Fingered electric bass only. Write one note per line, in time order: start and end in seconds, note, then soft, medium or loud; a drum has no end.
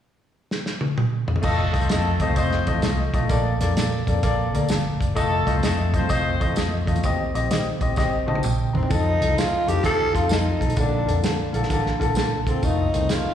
1.44 1.66 F1 loud
1.74 1.86 C2 medium
1.90 2.13 F2 medium
2.20 2.32 C2 medium
2.36 2.59 F1 medium
2.67 2.79 A1 medium
2.83 3.06 C2 medium
3.14 3.26 B1 medium
3.30 3.53 A#1 medium
3.61 3.73 F2 medium
3.77 3.99 A#2 medium
4.08 4.20 F2 medium
4.23 4.46 A#1 medium
4.54 4.66 D2 medium
4.71 4.93 G1 medium
5.01 5.13 F#1 medium
5.17 5.39 F1 loud
5.47 5.59 C2 medium
5.64 5.96 F2 loud
5.94 6.06 C2 medium
6.11 6.33 F1 medium
6.41 6.53 A1 medium
6.58 6.80 F2 medium
6.88 7.00 E2 medium
7.04 7.27 D#2 loud
7.35 7.47 A#1 medium
7.51 7.73 D#3 medium
7.81 7.93 A#1 medium
7.97 8.20 G1 medium
8.28 8.40 A#1 medium
8.44 8.67 A#1 medium
8.74 8.86 D#3 medium
8.91 9.13 F2 medium
9.21 9.33 C2 medium
9.53 muted fingered electric bass stroke soft
9.68 9.80 F2 medium
9.84 10.06 D#2 medium
10.15 10.49 F2 medium
10.61 10.73 B1 medium
10.77 11.00 A#1 medium
11.08 11.20 F2 medium
11.39 muted fingered electric bass stroke soft
11.54 11.66 A#1 medium
11.70 11.93 A1 medium
12.01 12.47 A#1 medium
12.47 12.59 F#1 medium
12.63 12.85 F1 loud
12.95 13.06 C2 medium
13.25 muted fingered electric bass stroke soft